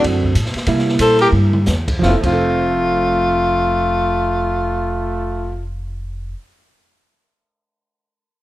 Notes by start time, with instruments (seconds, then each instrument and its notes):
Already playing: hollow-body jazz guitar D3 A3 C4 F#4
0.04 upright bass F#2, kick, ride
0.23 kick
0.35 upright bass A2, kick, hi-hat pedal, ride
0.46 snare
0.54 muted upright bass stroke, snare, ride
0.66 upright bass C3, hollow-body jazz guitar G3 A#3 E4, kick, ride
0.78 snare
0.89 snare
0.99 upright bass A#2, tenor saxophone A4, trumpet C5, kick, hi-hat pedal, ride
1.19 tenor saxophone G4, trumpet A#4, ride
1.32 upright bass G2, mid tom
1.53 mid tom
1.66 upright bass E2, snare, hi-hat pedal
1.88 kick, crash
1.99 upright bass F1, hollow-body jazz guitar F3, trumpet A3, tenor saxophone F4, kick, snare
2.03 hollow-body jazz guitar C4
2.08 hollow-body jazz guitar E4 A4
2.21 upright bass F1, hollow-body jazz guitar F3, trumpet A3, kick, crash
2.25 hollow-body jazz guitar C4, tenor saxophone F4
2.33 hollow-body jazz guitar A4